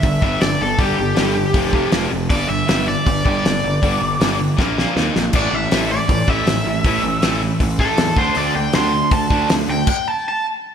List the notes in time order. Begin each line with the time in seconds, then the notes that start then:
Already playing: E5
0.03 G1 G2 D3, kick, open hi-hat
0.22 G1 G2 D3 G3 E5, kick
0.41 G1 G2 D3 D5, snare, open hi-hat
0.60 G1 G2 D3 A4
0.78 G1 G2 D3 G3 G4, kick, open hi-hat
0.98 G1 G2 D3
1.15 G1 G2 D3 G3, snare, open hi-hat
1.35 G2 D3
1.53 F1 F2 C3 F3, kick, open hi-hat
1.72 F2 C3 F3, kick
1.92 F1 F2 C3 F3, snare, open hi-hat
2.10 F1 F2 C3
2.30 G1 G2 D3 G3 D5, kick, open hi-hat
2.48 G1 G2 D3 E5
2.67 G1 G2 D3 G3, snare, open hi-hat
2.87 G2 D3 D5
3.06 G1 G2 D3, kick, open hi-hat
3.25 G1 G2 D3 G3 D5, kick
3.45 G1 G2 D3, snare, open hi-hat
3.64 G1 G2 D3
3.82 G1 G2 D3 G3, kick, open hi-hat
4.01 G1 G2 D3
4.20 G1 G2 D3 G3, snare, open hi-hat
4.39 G2 D3
4.57 A#1 A#2 F3 A#3, kick, snare
4.77 A#2 F3 A#3, snare
4.96 D#2 D#3 A#3 D#4, snare
5.15 A#1 D#3 A#3, snare
5.33 A1 A2 E3 A3 D5, kick, crash
5.52 A1 A2 E3 E5
5.71 A1 A2 E3 A3, snare, open hi-hat
5.90 A2 E3 D5
6.08 A1 A2 E3, kick, open hi-hat
6.27 A1 A2 E3 A3 E5, kick
6.46 A1 A2 E3, snare, open hi-hat
6.66 A1 A2 E3
6.84 A1 A2 E3 A3, kick, open hi-hat
7.03 A1 A2 E3
7.22 A1 A2 E3 A3, snare, open hi-hat
7.42 A2 E3
7.60 A1 A2 E3, kick, open hi-hat
7.79 A2 E3 A3 A4, kick
7.97 E2 A2 E3, snare, open hi-hat
8.16 D2 D3 A3 D4 C5, kick
8.35 D2 D3 A3 D4 D5, open hi-hat
8.55 D2 D3 A3 G5
8.73 D2 D3 A3 D4 C6, snare, open hi-hat
8.94 D3 A3
9.11 D2 D3 A3 A5, kick, open hi-hat
9.30 D2 D3 A3 D4, kick
9.49 D2 D3 A3, snare, open hi-hat
9.68 D2 D3 A3 G5
9.87 G5, kick, crash
10.08 A5
10.29 A5